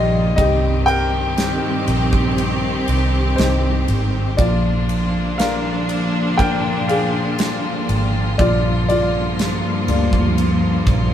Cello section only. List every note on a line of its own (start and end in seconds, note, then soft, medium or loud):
0.00 0.34 G2 medium
0.00 0.34 F3 medium
0.00 0.34 A#3 medium
0.38 4.35 G2 medium
0.38 4.35 D#3 medium
0.38 4.35 C4 medium
4.38 8.35 A#2 medium
4.38 8.35 F3 medium
4.38 8.35 D4 medium
8.38 11.14 G2 medium
8.38 11.14 F3 medium
8.38 11.14 A#3 medium